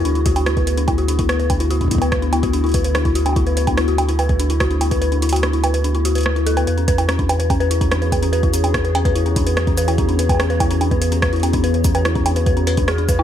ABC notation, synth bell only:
X:1
M:4/4
L:1/16
Q:1/4=145
K:Dlyd
V:1 name="Synth bell"
D E F D E B B D E F D E B B D E | F D E B B D E F D E B B D E F D | E B B D E F D E B B D E F D E B | B D E F D E B B D E F B B E A B |
B C B E C D B B C B E C D B B C | B E C D B B C B E C D B B C B E | C D B B C B E C D B B C B E C D | B B C B E C D B B C B D G D B E |]